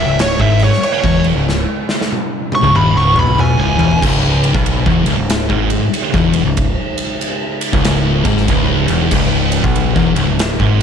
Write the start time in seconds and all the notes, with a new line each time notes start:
Already playing: C#3 G#3 E4
0.00 E5
0.07 C#1 C#2
0.19 C#5, snare, crash
0.39 G#1 G#2 E5, kick
0.59 crash
0.64 C#5
0.73 snare
0.83 C#5, crash
1.04 E1 E2, kick
1.24 crash
1.35 C#1 C#2
1.49 snare
1.89 snare
2.01 snare
2.12 high tom
2.52 C#6, high tom
2.62 C#1 C#2, mid tom
2.73 D#1 D#2 B5, mid tom
2.94 C#1 C#2 C#6
3.15 B1 B2, mid tom
3.20 B5
3.27 mid tom
3.39 B1 B2 G#5, mid tom
3.58 C#1 C#2 G#5
3.78 E1 E2, floor tom
3.91 floor tom
4.01 C#1 C#2 C#3 G#3 D#4, kick, crash
4.44 ride
4.54 B1 B2, kick
4.66 ride
4.86 E1 E2, kick
5.04 C#1 C#2, ride
5.17 C#1 C#2
5.30 snare, ride
5.49 G#1 G#2, kick
5.70 ride
5.94 ride
6.13 E1 E2, kick
6.33 ride
6.45 C#1 C#2
6.57 kick, ride
6.98 ride
7.21 ride
7.61 ride
7.73 C#1 C#2, kick
7.84 snare, ride
8.24 G#1 G#2, kick, ride
8.37 snare
8.48 C#1 C#2, kick, ride
8.88 E1 E2, ride
9.11 C#1 C#2 F#3, kick, crash
9.52 ride
9.64 B1 B2, kick
9.75 ride
9.96 E1 E2, kick
10.16 C#1 C#2, ride
10.28 C#1 C#2
10.39 snare, ride
10.60 G#1 G#2, kick